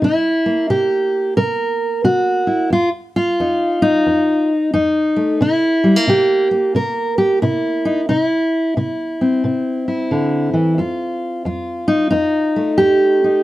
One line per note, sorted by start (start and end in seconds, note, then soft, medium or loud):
0.02 0.65 C3 medium
0.02 0.70 E4 medium
0.46 2.69 A#3 soft
0.70 1.32 C3 medium
0.70 1.37 G4 medium
1.37 2.00 C3 medium
1.37 2.04 A#4 medium
2.04 2.67 C3 medium
2.04 2.72 F#4 medium
2.47 2.69 E4 soft
2.70 3.33 F2 medium
2.70 2.89 F4 medium
3.16 4.50 F4 medium
3.40 4.02 F2 medium
3.40 3.81 D#4 soft
3.82 4.72 D#4 medium
4.07 4.69 F2 medium
4.74 5.36 F2 medium
4.74 5.41 D#4 medium
5.16 5.38 A3 soft
5.41 6.03 C3 medium
5.41 6.09 E4 medium
5.84 5.96 G3 medium
5.96 6.50 A#3 soft
6.07 6.70 C3 medium
6.07 6.75 G4 medium
6.51 8.07 A#3 soft
6.75 7.37 C3 medium
6.75 7.18 A#4 medium
7.18 7.42 G4 medium
7.42 8.05 C3 medium
7.42 8.08 E4 medium
7.85 8.00 D#4 medium
8.09 8.72 C3 medium
8.09 8.20 D#4 medium
8.20 8.76 E4 medium
8.77 9.39 C3 medium
8.77 9.87 E4 soft
9.21 11.87 C4 soft
9.44 10.06 C3 medium
9.88 10.79 E4 soft
10.11 10.53 D3 medium
10.53 10.78 E3 medium
10.78 11.41 F2 medium
10.78 11.46 F4 soft
11.45 12.08 F2 medium
11.45 12.77 F4 soft
11.88 12.09 D#4 medium
12.11 12.75 F2 medium
12.11 13.22 D#4 medium
12.56 13.43 A3 soft
12.78 13.43 F2 medium
12.78 13.43 G4 medium
13.24 13.43 D#4 soft